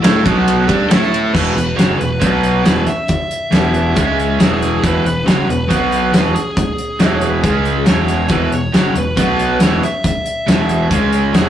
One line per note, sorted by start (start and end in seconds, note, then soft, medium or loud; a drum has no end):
0.00 0.24 A2 medium
0.00 0.24 A3 medium
0.00 0.24 E4 medium
0.00 0.24 A4 medium
0.00 0.24 E5 medium
0.04 snare loud
0.04 ride medium
0.24 0.66 B1 medium
0.24 0.67 B2 medium
0.24 0.67 F#3 medium
0.24 0.68 B3 medium
0.24 0.68 F#4 medium
0.24 0.68 B4 medium
0.24 0.68 F#5 medium
0.24 kick loud
0.24 ride medium
0.48 ride medium
0.67 0.89 G2 medium
0.67 0.89 G3 medium
0.67 1.33 A3 medium
0.67 0.90 D4 medium
0.67 1.33 E4 medium
0.67 0.90 G4 loud
0.67 1.33 A4 medium
0.67 1.33 E5 medium
0.67 kick medium
0.67 ride medium
0.89 1.31 A2 medium
0.89 1.34 A3 medium
0.89 1.34 E4 medium
0.89 1.35 A4 medium
0.89 1.34 A4 medium
0.89 snare loud
0.89 ride medium
1.03 snare soft
1.14 ride medium
1.33 1.55 E1 medium
1.33 1.55 E2 medium
1.33 1.56 B2 medium
1.33 1.55 E3 loud
1.33 1.54 B4 medium
1.33 kick loud
1.33 crash medium
1.55 1.77 E1 medium
1.55 1.74 E2 medium
1.55 1.74 B2 medium
1.55 1.77 B4 medium
1.55 closed hi-hat medium
1.77 1.98 F#1 medium
1.77 1.99 F#2 medium
1.77 2.00 C#3 medium
1.77 2.00 F#3 loud
1.77 1.98 C#5 medium
1.77 snare medium
1.77 closed hi-hat medium
1.98 2.20 E1 medium
1.98 2.18 E2 medium
1.98 2.18 B2 medium
1.98 2.65 B4 medium
1.98 closed hi-hat medium
2.21 2.62 B1 medium
2.21 2.64 B2 medium
2.21 2.64 F#3 medium
2.21 2.65 B3 medium
2.21 kick medium
2.21 closed hi-hat medium
2.43 closed hi-hat medium
2.65 2.85 E1 medium
2.65 2.86 E2 medium
2.65 2.87 B2 medium
2.65 2.87 E3 medium
2.65 2.88 B4 medium
2.65 snare loud
2.65 closed hi-hat medium
2.87 4.44 E5 medium
2.87 snare soft
2.87 closed hi-hat medium
3.08 kick loud
3.08 closed hi-hat medium
3.31 closed hi-hat medium
3.51 3.93 E1 medium
3.51 3.95 E2 medium
3.51 3.94 B2 medium
3.51 3.95 E3 medium
3.51 3.75 G4 medium
3.51 3.75 B4 medium
3.51 snare loud
3.51 closed hi-hat medium
3.74 3.96 G4 medium
3.74 3.97 B4 medium
3.74 closed hi-hat medium
3.94 4.37 C#2 medium
3.94 4.38 C#3 medium
3.94 4.39 G#3 medium
3.94 4.39 C#4 medium
3.94 4.28 G#4 medium
3.94 kick medium
3.94 closed hi-hat medium
4.20 closed hi-hat soft
4.39 4.80 E1 medium
4.39 4.82 E2 medium
4.39 4.82 B2 medium
4.39 4.83 E3 medium
4.39 4.85 G#4 medium
4.39 snare loud
4.39 closed hi-hat medium
4.62 snare soft
4.62 closed hi-hat medium
4.83 5.04 E1 medium
4.83 5.02 E2 medium
4.83 5.03 B2 loud
4.83 5.05 E3 loud
4.83 5.06 B4 medium
4.83 kick loud
4.83 closed hi-hat medium
5.03 5.25 E1 medium
5.03 5.21 E2 medium
5.03 5.22 B2 medium
5.03 5.27 B4 medium
5.03 closed hi-hat medium
5.24 5.47 F#1 medium
5.24 5.46 F#2 medium
5.24 5.47 C#3 medium
5.24 5.47 F#3 medium
5.24 5.49 C#5 medium
5.24 closed hi-hat medium
5.28 snare loud
5.46 5.69 E1 medium
5.46 5.65 E2 medium
5.46 5.65 B2 medium
5.46 6.13 B4 medium
5.46 closed hi-hat medium
5.67 6.11 B1 medium
5.67 6.11 B2 medium
5.67 6.12 F#3 loud
5.67 6.12 B3 loud
5.67 kick medium
5.67 closed hi-hat medium
5.92 closed hi-hat medium
6.12 6.34 E1 medium
6.12 6.34 E2 medium
6.12 6.34 B2 medium
6.12 6.34 E3 loud
6.12 6.34 B4 medium
6.12 snare loud
6.12 closed hi-hat medium
6.35 7.91 G#4 medium
6.35 closed hi-hat medium
6.57 kick loud
6.57 closed hi-hat medium
6.78 closed hi-hat medium
7.00 7.40 E1 medium
7.00 7.43 E2 medium
7.00 7.42 B2 medium
7.00 7.42 E3 medium
7.00 7.15 E5 medium
7.00 snare loud
7.00 closed hi-hat medium
7.16 7.29 C#5 medium
7.21 closed hi-hat medium
7.30 7.44 B4 medium
7.43 7.84 C#2 medium
7.43 7.86 C#3 medium
7.43 7.86 G#3 medium
7.43 7.87 C#4 medium
7.43 7.76 G#4 medium
7.43 kick loud
7.43 closed hi-hat medium
7.65 closed hi-hat medium
7.86 8.28 E1 medium
7.86 8.28 E2 medium
7.86 8.28 B2 medium
7.86 8.29 E3 medium
7.86 8.28 C#5 medium
7.86 snare loud
7.86 closed hi-hat medium
8.08 snare soft
8.08 closed hi-hat medium
8.29 8.50 E1 medium
8.29 8.50 E2 medium
8.29 8.50 B2 loud
8.29 8.51 E3 loud
8.29 8.51 B4 medium
8.29 kick loud
8.29 closed hi-hat medium
8.51 8.72 E1 medium
8.51 8.69 E2 medium
8.51 8.69 B2 medium
8.51 8.75 C#5 medium
8.51 closed hi-hat medium
8.74 8.94 F#1 medium
8.74 8.95 F#2 medium
8.74 8.95 C#3 medium
8.74 8.95 F#3 medium
8.74 8.95 C#5 medium
8.74 snare loud
8.74 closed hi-hat medium
8.96 9.16 E1 medium
8.96 9.13 E2 medium
8.96 9.13 B2 medium
8.96 9.16 B4 medium
8.96 closed hi-hat medium
9.16 9.58 B1 medium
9.16 9.59 B2 medium
9.16 9.59 F#3 medium
9.16 9.60 B3 medium
9.16 9.62 B4 medium
9.16 kick medium
9.16 closed hi-hat medium
9.39 closed hi-hat medium
9.59 9.81 E1 medium
9.59 9.81 E2 medium
9.59 9.81 B2 medium
9.59 9.81 E3 medium
9.59 9.84 C#5 medium
9.59 snare loud
9.59 closed hi-hat medium
9.83 10.05 E5 medium
9.83 snare soft
9.83 closed hi-hat medium
10.04 10.87 E5 medium
10.04 kick loud
10.04 closed hi-hat medium
10.26 closed hi-hat medium
10.47 10.88 E1 medium
10.47 10.89 E2 medium
10.47 10.89 B2 medium
10.47 10.90 E3 medium
10.47 snare loud
10.47 closed hi-hat medium
10.69 closed hi-hat medium
10.90 11.31 C#2 medium
10.90 11.33 C#3 medium
10.90 11.33 G#3 medium
10.90 11.34 C#4 medium
10.90 kick loud
10.90 closed hi-hat medium
11.13 closed hi-hat medium
11.33 11.49 E1 medium
11.33 11.49 E2 medium
11.33 11.49 B2 medium
11.33 11.49 E3 medium
11.33 11.49 G#4 medium
11.33 snare loud
11.33 closed hi-hat medium